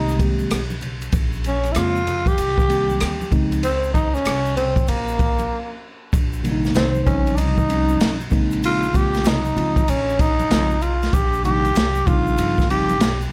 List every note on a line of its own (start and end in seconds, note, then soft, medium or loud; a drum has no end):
0.00 0.48 C2 medium
0.00 0.17 D#3 medium
0.00 0.18 G#3 medium
0.00 0.18 A#3 medium
0.00 0.19 C4 medium
0.00 0.20 D#4 loud
0.00 0.19 G4 medium
0.08 cross-stick soft
0.08 shaker soft
0.18 0.58 D#3 medium
0.18 0.58 G#3 medium
0.18 0.59 A#3 medium
0.18 0.59 C4 medium
0.18 0.59 G4 medium
0.18 kick loud
0.18 ride medium
0.18 shaker soft
0.39 high conga medium
0.39 shaker soft
0.51 1.10 B1 medium
0.51 cross-stick loud
0.51 hi-hat pedal medium
0.51 ride medium
0.51 shaker medium
0.70 high conga medium
0.70 shaker soft
0.81 ride medium
0.81 low conga medium
0.81 shaker soft
1.01 ride soft
1.01 shaker medium
1.12 1.73 A#1 loud
1.12 kick loud
1.12 ride medium
1.12 shaker medium
1.33 shaker soft
1.44 1.73 C#4 medium
1.44 ride medium
1.44 high conga soft
1.44 shaker soft
1.63 cross-stick soft
1.63 ride soft
1.63 shaker soft
1.72 2.00 C#3 medium
1.72 1.79 E4 medium
1.72 hi-hat pedal medium
1.72 ride medium
1.72 shaker medium
1.76 2.35 F2 medium
1.76 2.00 G#3 medium
1.76 2.00 A#3 medium
1.76 2.01 C4 medium
1.76 2.29 F4 loud
1.76 2.01 F4 medium
1.76 cross-stick loud
1.96 shaker soft
2.07 ride medium
2.07 low conga medium
2.07 shaker soft
2.26 3.32 G4 loud
2.26 kick medium
2.26 ride soft
2.26 high conga soft
2.26 shaker soft
2.38 2.98 C2 loud
2.38 ride medium
2.38 shaker medium
2.58 kick medium
2.58 cross-stick soft
2.58 shaker medium
2.68 3.16 D#3 medium
2.68 3.16 G3 medium
2.68 3.17 A#3 medium
2.68 3.17 C4 medium
2.68 3.17 G4 medium
2.68 ride medium
2.68 shaker soft
2.90 high conga medium
2.90 shaker soft
3.00 3.31 D2 medium
3.00 cross-stick medium
3.00 hi-hat pedal medium
3.00 ride medium
3.00 shaker medium
3.21 high conga medium
3.21 shaker soft
3.30 4.22 C#2 medium
3.30 3.62 C#3 medium
3.30 3.63 F3 medium
3.30 3.63 G#3 medium
3.30 3.63 C4 medium
3.30 3.64 D#4 medium
3.30 kick medium
3.30 ride medium
3.30 low conga medium
3.30 shaker soft
3.52 ride soft
3.52 shaker soft
3.63 3.92 C4 loud
3.63 ride medium
3.63 shaker medium
3.83 shaker soft
3.93 4.15 D#4 medium
3.93 kick medium
3.93 cross-stick soft
3.93 ride medium
3.93 high conga soft
3.93 shaker soft
4.14 4.56 C#4 loud
4.14 cross-stick soft
4.14 shaker soft
4.25 4.85 C2 medium
4.25 cross-stick loud
4.25 hi-hat pedal medium
4.25 ride medium
4.25 shaker medium
4.46 shaker soft
4.56 4.89 C4 medium
4.56 ride medium
4.56 low conga medium
4.56 shaker soft
4.76 kick medium
4.76 ride soft
4.76 high conga soft
4.76 shaker soft
4.87 5.48 A#1 medium
4.87 5.82 A#3 medium
4.87 ride medium
4.87 shaker medium
5.08 shaker soft
5.19 kick loud
5.19 ride medium
5.19 shaker soft
5.39 ride soft
5.39 high conga medium
5.39 shaker soft
6.13 6.73 A#1 loud
6.13 kick loud
6.13 ride medium
6.13 shaker medium
6.33 shaker soft
6.42 7.06 C3 medium
6.42 7.06 D#3 medium
6.42 7.05 G3 medium
6.42 7.07 A#3 medium
6.42 6.53 D4 medium
6.42 ride medium
6.42 high conga soft
6.42 shaker soft
6.51 7.06 D#4 medium
6.64 snare soft
6.64 shaker soft
6.75 7.05 C2 medium
6.75 7.00 C4 medium
6.75 snare loud
6.75 hi-hat pedal medium
6.75 ride medium
6.75 low conga medium
6.75 shaker medium
6.95 high conga medium
6.95 shaker soft
7.03 7.38 A#1 loud
7.03 7.60 C#3 medium
7.03 7.60 F3 medium
7.03 7.60 G3 medium
7.03 7.08 C4 medium
7.03 7.60 C4 medium
7.03 7.35 C#4 loud
7.03 kick medium
7.03 low conga medium
7.03 shaker soft
7.07 7.61 D#4 medium
7.07 ride medium
7.27 ride soft
7.27 high conga soft
7.27 shaker soft
7.34 7.39 D4 medium
7.34 8.31 D#4 medium
7.34 shaker medium
7.38 7.97 C2 medium
7.38 ride medium
7.57 kick medium
7.57 shaker soft
7.68 8.17 F3 medium
7.68 8.17 G3 medium
7.68 8.17 C4 medium
7.68 8.16 C#4 medium
7.68 8.17 D#4 medium
7.68 ride medium
7.68 shaker soft
7.89 high conga medium
7.89 shaker soft
8.00 snare medium
8.00 hi-hat pedal medium
8.00 ride medium
8.00 shaker medium
8.20 shaker soft
8.30 9.26 A#1 medium
8.30 8.85 C#3 medium
8.30 8.85 G#3 medium
8.30 8.85 A#3 medium
8.30 8.85 C4 medium
8.30 8.86 D#4 medium
8.30 kick medium
8.30 ride medium
8.30 low conga medium
8.30 shaker soft
8.51 ride soft
8.51 shaker medium
8.63 8.98 F4 loud
8.63 ride medium
8.63 shaker medium
8.83 shaker soft
8.93 9.41 C#3 medium
8.93 9.41 G#3 medium
8.93 9.41 A#3 medium
8.93 9.42 C4 medium
8.93 9.42 F4 medium
8.93 9.29 G4 loud
8.93 kick medium
8.93 ride medium
8.93 high conga soft
8.93 shaker soft
9.14 snare soft
9.14 ride soft
9.14 shaker soft
9.24 9.55 C2 medium
9.24 9.91 D#4 loud
9.24 snare loud
9.24 hi-hat pedal medium
9.24 ride medium
9.24 low conga medium
9.24 shaker medium
9.45 high conga medium
9.45 shaker soft
9.55 9.86 C#2 medium
9.55 9.80 C#3 medium
9.55 9.81 F3 medium
9.55 9.81 G#3 medium
9.55 9.81 C4 medium
9.55 9.82 F4 medium
9.55 ride medium
9.55 low conga medium
9.55 shaker soft
9.76 kick medium
9.76 ride soft
9.76 high conga soft
9.76 shaker medium
9.88 10.48 A#1 loud
9.88 10.22 C#4 loud
9.88 ride medium
9.88 shaker medium
10.09 shaker medium
10.19 10.84 D#4 loud
10.19 kick loud
10.19 ride medium
10.19 shaker soft
10.39 ride soft
10.39 high conga medium
10.39 shaker soft
10.49 11.10 B1 medium
10.49 10.75 C#3 medium
10.49 10.75 F3 medium
10.49 10.75 G#3 medium
10.49 10.75 C4 medium
10.49 10.76 F4 medium
10.49 snare loud
10.49 hi-hat pedal medium
10.49 ride medium
10.49 shaker medium
10.70 shaker soft
10.82 11.15 F4 medium
10.82 ride medium
10.82 low conga medium
10.82 shaker soft
11.02 snare soft
11.02 ride soft
11.02 shaker medium
11.13 11.73 A#1 loud
11.13 11.44 G4 loud
11.13 kick loud
11.13 ride medium
11.13 shaker medium
11.33 shaker soft
11.43 11.68 C3 medium
11.43 11.68 D#3 medium
11.43 11.69 G3 medium
11.43 11.69 A#3 medium
11.43 11.69 D#4 medium
11.43 12.08 G4 loud
11.43 ride medium
11.43 high conga soft
11.43 shaker soft
11.65 ride soft
11.65 shaker soft
11.75 12.06 C2 medium
11.75 snare loud
11.75 hi-hat pedal medium
11.75 ride medium
11.75 low conga medium
11.75 shaker medium
11.95 high conga medium
11.95 shaker soft
12.05 12.37 A#1 loud
12.05 12.60 C#3 medium
12.05 12.60 F3 medium
12.05 12.60 G3 medium
12.05 12.61 C4 medium
12.05 12.61 D#4 medium
12.05 12.69 F4 loud
12.05 kick loud
12.05 ride medium
12.05 low conga medium
12.05 shaker soft
12.27 high conga soft
12.27 shaker medium
12.38 13.01 G1 medium
12.38 ride medium
12.38 shaker medium
12.58 kick medium
12.58 snare soft
12.58 shaker soft
12.68 12.93 C#3 medium
12.68 12.94 F3 medium
12.68 12.94 G3 medium
12.68 12.94 C4 medium
12.68 12.95 D#4 medium
12.68 13.29 G4 loud
12.68 ride medium
12.68 shaker soft
12.89 ride soft
12.89 high conga medium
12.89 shaker soft
13.00 13.30 B1 medium
13.00 snare loud
13.00 hi-hat pedal medium
13.00 ride medium
13.00 shaker medium
13.21 shaker soft